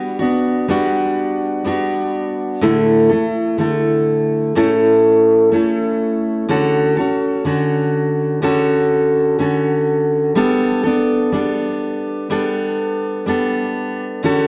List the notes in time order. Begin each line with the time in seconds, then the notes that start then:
Already playing: G3 B3 D4 F#4
0.19 B3 D4 F#4
0.68 G3 B3 D4 F#4
1.65 G3 B3 D4 F#4
2.62 A2 D3 A3 E4 A4
3.09 A3 E4 A4
3.58 D3 A3 E4 A4
4.55 A2 A3 C#4 E4 A4
5.52 A3 C#4 E4 A4
6.49 D3 C#4 F#4 A4
6.97 C#4 F#4 A4
7.45 D3 C#4 F#4 A4
8.42 D3 C#4 F#4 A4
9.39 D3 C#4 F#4 A4
10.35 G3 B3 D4 A4
10.84 B3 D4 A4
11.32 G3 B3 D4 A4
12.29 G3 B3 D4 A4
13.26 G3 B3 D4 A4
14.23 D3 C#4 F#4 A4